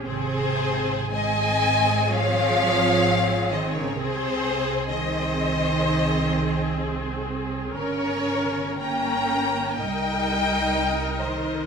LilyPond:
<<
  \new Staff \with { instrumentName = "Violin section" } { \time 4/4 \key aes \major \tempo 4 = 63 c''4 aes''4 f''4. ees''16 des''16 | c''4 ees''2~ ees''8 r8 | des''4 bes''4 g''4. ees''8 | }
  \new Staff \with { instrumentName = "Violin section" } { \time 4/4 \key aes \major aes'4 ees''4 des''4. c''16 bes'16 | aes'4 c''2~ c''8 r8 | bes'4 g''4 ees''4. c''8 | }
  \new Staff \with { instrumentName = "Viola section" } { \time 4/4 \key aes \major <c' aes'>4 <c' aes'>2. | <c' aes'>4 <c' aes'>2. | <des' bes'>4 <des' bes'>4 <ees' bes'>2 | }
  \new Staff \with { instrumentName = "Cello section" } { \clef bass \time 4/4 \key aes \major c4 aes4 f4. ees16 des16 | c4 ees2~ ees8 r8 | des4 bes4 g4. ees8 | }
  \new Staff \with { instrumentName = "Double bass section" } { \clef bass \time 4/4 \key aes \major aes,,1 | c,1 | g,,2 c,2 | }
>>